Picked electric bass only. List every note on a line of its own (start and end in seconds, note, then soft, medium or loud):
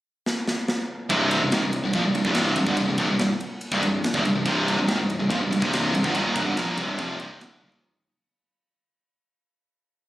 1.10 1.39 C1 loud
1.43 1.52 C1 medium
1.52 1.62 G#1 loud
1.63 1.82 C1 medium
1.84 1.93 C1 loud
1.94 2.04 A#1 medium
2.05 2.14 C1 medium
2.15 2.24 C1 medium
2.25 2.54 C1 loud
2.56 2.66 C1 medium
2.67 2.77 G1 loud
2.77 2.87 C1 medium
2.89 2.97 C1 medium
2.98 3.08 C1 medium
3.09 3.18 C1 medium
3.19 3.29 C1 medium
3.72 3.82 C1 loud
3.82 4.02 C1 medium
4.14 4.24 D1 loud
4.24 4.34 C1 medium
4.34 4.45 C1 medium
4.46 4.76 C1 loud
4.76 4.86 C1 medium
4.87 4.97 G#1 loud
4.98 5.18 C1 medium
5.19 5.29 C1 medium
5.31 5.40 A#1 loud
5.41 5.51 C1 medium
5.52 5.61 C1 medium
5.62 5.91 C1 loud
5.94 6.04 C1 medium
6.04 6.14 G1 loud
6.15 6.34 D#1 medium
6.36 6.46 C1 loud
6.47 6.56 G1 loud
6.59 6.77 A#1 medium
6.78 6.98 C1 medium
6.99 7.19 F1 medium
7.21 7.40 C1 medium
7.42 7.62 D1 loud
7.64 7.83 D#1 loud